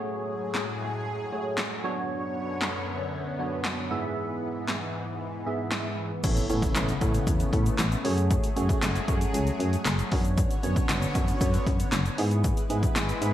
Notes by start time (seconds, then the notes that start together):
Already playing: A2 F#3 A3 F#4 G#4 C#5
0.55 snare, clap
1.32 A3 F#4 G#4 C#5
1.58 snare, clap
1.84 F#2 D3 F#3 B3 D4 F#4 C#5
2.62 snare, clap
3.39 F#3 B3 D4 F#4 C#5
3.65 snare, clap
3.90 G#2 E3 B3 E4 G#4 E5
4.68 snare, clap
5.46 G#2 B3 E4 G#4 E5
5.72 snare, clap
6.24 A1 C#3 A3 B3 C#4 E4 A4 C#5, kick, closed hi-hat, crash, impact, shaker
6.36 closed hi-hat, shaker
6.49 A2 B3 C#4 E4 A4 C#5, closed hi-hat, shaker
6.62 kick, closed hi-hat, shaker
6.75 A1, snare, clap, closed hi-hat, shaker
6.89 closed hi-hat, shaker
7.01 A2 B3 C#4 E4 A4 C#5, kick, closed hi-hat, shaker
7.14 closed hi-hat, shaker
7.27 E2, kick, closed hi-hat, shaker
7.40 closed hi-hat, shaker
7.53 A2, kick, closed hi-hat
7.66 closed hi-hat, shaker
7.78 A1, snare, clap, closed hi-hat, shaker
7.92 closed hi-hat, shaker
8.04 F#2 F#3 A3 C#4 F#4 G#4 C#5, open hi-hat
8.18 closed hi-hat, shaker
8.31 kick, closed hi-hat, shaker
8.44 closed hi-hat, shaker
8.56 F#2 A3 C#4 F#4 G#4 C#5, closed hi-hat, shaker
8.69 kick, closed hi-hat, shaker
8.82 F#1, snare, clap, closed hi-hat, shaker
8.95 closed hi-hat, shaker
9.08 F#2 A3 C#4 F#4 G#4 C#5, kick, closed hi-hat, shaker
9.21 closed hi-hat, shaker
9.34 C#2, closed hi-hat, shaker
9.47 closed hi-hat, shaker
9.60 F#2, closed hi-hat
9.73 closed hi-hat, shaker
9.85 F#1, snare, clap, closed hi-hat, shaker
9.99 closed hi-hat, shaker
10.12 F#2 D3 B3 C#4 D4 F#4 C#5, kick, open hi-hat
10.25 closed hi-hat, shaker
10.38 kick, closed hi-hat, shaker
10.51 closed hi-hat, shaker
10.63 F#2 B3 C#4 D4 F#4 C#5, closed hi-hat, shaker
10.76 kick, closed hi-hat, shaker
10.89 F#1, snare, clap, closed hi-hat, shaker
11.02 closed hi-hat, shaker
11.15 F#2 B3 C#4 D4 F#4 C#5, kick, closed hi-hat, shaker
11.28 closed hi-hat, shaker
11.41 F#2, kick, closed hi-hat, shaker
11.54 closed hi-hat, shaker
11.67 F#2, kick, closed hi-hat
11.80 closed hi-hat, shaker
11.92 F#1, snare, clap, closed hi-hat, shaker
12.06 closed hi-hat, shaker
12.18 G#2 G#3 B3 E4 G#4 B4, open hi-hat
12.31 closed hi-hat, shaker
12.44 kick, closed hi-hat, shaker
12.57 closed hi-hat, shaker
12.70 G#2 B3 E4 G#4, closed hi-hat, shaker
12.83 kick, closed hi-hat, shaker
12.96 G#1, snare, clap, closed hi-hat, shaker
13.09 closed hi-hat, shaker
13.21 G#2 B3 E4 G#4, closed hi-hat, shaker